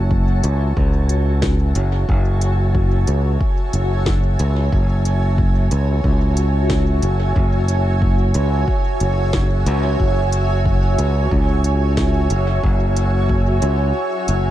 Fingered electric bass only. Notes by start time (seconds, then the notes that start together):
Already playing: F#1
0.44 C#2
0.77 C#2
1.76 F#1
2.09 F#1
3.08 C#2
3.74 F#1
4.40 C#2
4.73 F#1
5.72 C#2
6.04 C#2
7.03 F#1
7.36 F#1
8.35 C#2
9.01 F#1
9.66 C#2
10.00 F#1
10.98 C#2
11.31 C#2
12.31 F#1
12.63 F#1
13.62 C#2
14.29 F#1